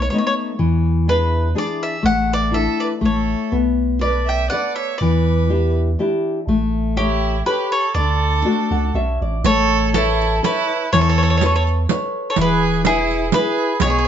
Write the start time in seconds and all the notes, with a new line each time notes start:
0.02 C#5
0.10 A3 B3 D#4 C#5
0.18 C#5
0.27 C#5
0.59 E2 E3
1.08 D4 E4 G#4 B4
1.55 D4 E4 G#4 D5
1.83 E5
2.03 A1 A3 F#5
2.33 D5
2.51 D4 E4 A4 E5
2.56 A4
2.80 B4 D5
3.01 A1 A3
3.05 A4 C#5
3.52 B1 B3
4.01 A4 B4 D5
4.26 E5 G5
4.50 A4 B4 D5 F#5
4.76 C#5 E5
4.98 E2 E3 B4 D5
5.50 D4 E4 G4
5.99 D4 E4 G4
6.47 A1 A3
6.96 E4 G4 A4 C#5
7.46 G4 A4 B4 C#5
7.72 A4 C#5
7.95 D2 D3 A4 D5
8.45 A3 D4 F#4
8.71 C#2 F#5
8.94 B1 C#4 D4 F#4 E5
9.21 A1 D5
9.44 A1 A3 A4 C#5, riq
9.94 E4 A4 B4 C#5, riq
10.22 riq
10.43 E4 A4 B4 C#5, riq
10.93 E2 E3 A4 C#5, riq
11.01 C#5
11.09 C#5
11.18 C#5
11.23 C#5
11.30 C#5
11.37 C#5, riq
11.42 A4 B4 C#5
11.56 C#5
11.67 riq
11.89 A4 B4 C#5, riq
12.30 A4 C#5
12.36 E1 E3, riq
12.41 G#4 B4
12.85 E4 G#4 B4, riq
13.11 riq
13.32 E4 G#4 B4, riq
13.80 B1 B2 G#4 C#5, riq
13.90 C#5
13.99 C#5